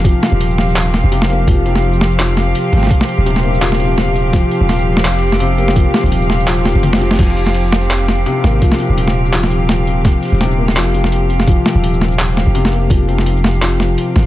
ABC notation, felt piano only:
X:1
M:4/4
L:1/8
Q:"Swing 16ths" 1/4=168
K:Cm
V:1 name="Felt piano" clef=bass
F, z4 z C, B, | F, C, z2 F, z3 | z2 C, B, F, C, z2 | F, z4 z C, B, |
F, C, z2 F, z2 F, | F, z4 z C, B, | F, C, z2 F, z3 | z2 C, B, F, C, z2 |
F, z4 z C, B, | F, C, z2 F, z3 |]